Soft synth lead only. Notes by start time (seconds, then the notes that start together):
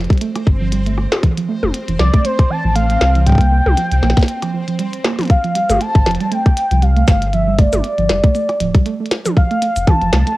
1.99 D5
2.25 C5
2.50 A5
2.76 F5
3.26 G5
5.30 F5
5.81 A5
6.32 G5
6.82 F5
7.33 E5
7.59 D5
9.37 F5
9.88 A5